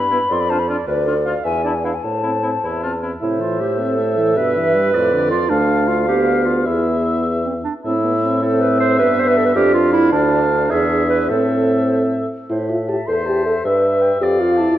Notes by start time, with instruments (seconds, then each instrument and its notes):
Already playing: bassoon G2, clarinet B4, flute B5
0.11 french horn B3, oboe E4
0.30 bassoon F2, clarinet D5, flute C6
0.41 flute B5
0.49 french horn D4, oboe F4, clarinet C5, flute A5
0.59 flute B5
0.69 french horn D4, oboe F4, clarinet D5
0.87 bassoon D2, clarinet B4, flute D5
1.06 french horn D4, oboe F4, clarinet A4
1.25 french horn D4, oboe F4, clarinet F5
1.45 bassoon E2, clarinet E5, flute G#5
1.64 french horn D4, oboe E4, clarinet D5, flute A5
1.75 flute G#5
1.84 french horn D4, oboe E4, clarinet B4, flute F5
1.95 flute G#5
2.03 bassoon A2, clarinet C5, flute A5
2.23 french horn C4, oboe E4
2.43 french horn C4, oboe E4
2.63 bassoon E2, oboe E4
2.82 french horn C4, oboe F4
3.02 french horn C4, oboe E4
3.21 bassoon A2, french horn C3, clarinet E4, flute C5, oboe E5
3.41 french horn E3, clarinet F4
3.60 french horn A3, clarinet G4
3.79 french horn C4, clarinet A4
3.98 french horn A3
4.18 french horn E3
4.37 bassoon G2, french horn B2, clarinet B4, flute E5
4.56 french horn E3
4.75 french horn G3
4.93 bassoon F2, french horn A2, oboe D5, flute D5
5.12 french horn D3
5.31 french horn F3, clarinet F4
5.50 bassoon D2, french horn A3, clarinet D4, oboe F5, flute F5
5.88 clarinet F4
6.08 french horn B3, clarinet G4, oboe F5
6.46 clarinet F4
6.66 bassoon E2, french horn B3, clarinet E4, flute G#4, oboe E5
7.45 clarinet C4
7.64 clarinet D4
7.84 bassoon A2, french horn C4, clarinet E4, oboe E5
8.04 french horn B3
8.23 french horn C4
8.42 french horn C4, clarinet A4, flute C5, oboe E5
8.62 clarinet B4
8.80 clarinet C5
8.99 bassoon G2, french horn B3, clarinet B4, flute E5
9.20 clarinet C5
9.28 clarinet B4
9.37 clarinet A4
9.46 clarinet B4
9.55 bassoon F2, french horn D4, clarinet G4, flute D5, oboe F5
9.74 clarinet F4
9.93 clarinet E4
10.12 bassoon D2, clarinet D4, french horn D4, oboe F5
10.70 bassoon E2, french horn D4, clarinet G#4, flute E5, oboe E5
11.09 clarinet B4
11.29 bassoon A2, french horn C4, clarinet A4, flute C5, oboe E5
12.49 bassoon A2, french horn E4, clarinet C5, flute E5
12.69 french horn F4, clarinet E5
12.88 french horn G4, clarinet A5
13.07 bassoon E2, french horn A4, oboe C5, clarinet C6
13.26 french horn G4, clarinet A5
13.46 french horn A4, clarinet E5
13.64 bassoon G2, clarinet B4, french horn B4, oboe E5
13.83 clarinet E5
14.02 clarinet G5
14.20 bassoon F2, french horn G4, clarinet D5, oboe D5, flute F5
14.39 french horn F4, clarinet F5
14.58 french horn E4, clarinet A5